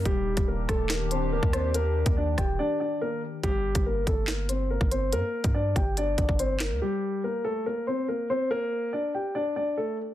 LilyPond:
<<
  \new Staff \with { instrumentName = "Grand piano" } { \time 4/4 \key g \minor \tempo 4 = 142 <g g'>4 <bes bes'>8 <a a'>8 <bes bes'>8 <c' c''>8 <bes bes'>8 <c' c''>8 | <bes bes'>4 <d' d''>8 <g' g''>8 <d' d''>8 <d' d''>8 <bes bes'>8 r8 | <g g'>4 <bes bes'>8 <a a'>8 <bes bes'>8 <c' c''>8 <bes bes'>8 <c' c''>8 | <bes bes'>4 <d' d''>8 <g' g''>8 <d' d''>8 <d' d''>8 <c' c''>8 <bes bes'>8 |
<g g'>4 <bes bes'>8 <a a'>8 <bes bes'>8 <c' c''>8 <bes bes'>8 <c' c''>8 | <bes bes'>4 <d' d''>8 <g' g''>8 <d' d''>8 <d' d''>8 <a a'>8 r8 | }
  \new Staff \with { instrumentName = "Analog synth pad" } { \time 4/4 \key g \minor <ees d' g'>1~ | <ees d' g'>1 | r1 | r1 |
r1 | r1 | }
  \new Staff \with { instrumentName = "808-style bass" } { \clef bass \time 4/4 \key g \minor ees,,8. ees,,8. ees,,4.~ ees,,16 ees,8.~ | ees,8. ees,8. ees,,8 r2 | g,,8. g,,8. g,,4.~ g,,16 g,,8. | g,16 r8 g,8. g,,4 g,,16 g,,4 d,16 |
r1 | r1 | }
  \new DrumStaff \with { instrumentName = "Drums" } \drummode { \time 4/4 <hh bd>8. <hh bd>16 r8 <hh bd ss>8 <hc hh sn>8 hh8 r16 bd16 <hh ss>8 | hh8. <hh bd>16 r8 <hh bd ss>8 r4 r4 | <hh bd>8. <hh bd>16 r8 <hh bd>8 <hc hh sn>8 hh8 r16 bd16 hh8 | hh8. <hh bd>16 r8 <hh bd>8 hh8 <hh bd>16 bd16 hh8 <hc hh sn>8 |
r4 r4 r4 r4 | r4 r4 r4 r4 | }
>>